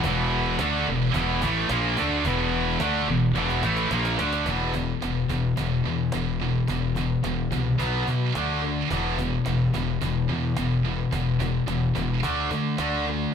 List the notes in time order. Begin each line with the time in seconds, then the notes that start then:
0.04 E1 E2 B2 E3, cajon bass
0.59 D2 D3 A3 D4, cajon slap
0.87 E1 E2 B2
1.13 E1 E2 B2 E3, cajon bass
1.41 A1 A2 E3 A3, cajon bass
1.69 A#1 A#2 F3 A#3, cajon slap
1.97 D2 D3 A3 D4, cajon bass
2.24 E1 E2 B2 E3, cajon bass
2.79 D2 D3 A3 D4, cajon slap
3.06 E1 E2 B2
3.34 E1 E2 B2 E3, cajon slap
3.50 cajon slap
3.62 A1 A2 E3 A3, cajon slap
3.77 cajon slap
3.90 A#1 A#2 F3 A#3, cajon slap
4.05 cajon slap
4.17 D2 D3 A3 D4, cajon slap
4.33 cajon slap
4.45 E1 E2 B2 E3, cajon bass
4.73 E2 B2, cajon bass
5.01 E1 E2 B2, cajon slap
5.29 E1 E2 B2, cajon bass
5.56 E1 E2 B2, cajon bass
5.84 E2 B2, cajon slap
6.12 E1 E2 B2, cajon slap
6.40 E2 B2, cajon slap
6.67 E1 E2 B2, cajon bass
6.95 E2 B2, cajon bass
7.23 E1 E2 B2, cajon slap
7.51 C2 E2 B2, cajon bass
7.78 B1 B2 F#3 B3, cajon bass
8.06 B2 F#3, cajon bass
8.34 D2 D3 A3 D4, cajon slap
8.62 D3 A3, cajon slap
8.89 E1 E2 B2 E3, cajon bass
9.18 E2 B2, cajon bass
9.45 E1 E2 B2, cajon slap
9.73 E1 E2 B2, cajon bass
10.01 E1 E2 B2, cajon bass
10.29 E2 B2, cajon slap
10.57 E1 E2 B2, cajon slap
10.71 cajon slap
10.84 E2 B2, cajon slap
11.11 E1 E2 B2, cajon bass
11.40 E2 B2, cajon bass
11.67 E1 E2 B2, cajon slap
11.95 E1 E2 B2, cajon bass
12.22 D2 D3 A3 D4, cajon bass
12.51 D3 A3, cajon bass
12.78 D2 D3 A3 D4, cajon slap
13.06 D3 A3, cajon slap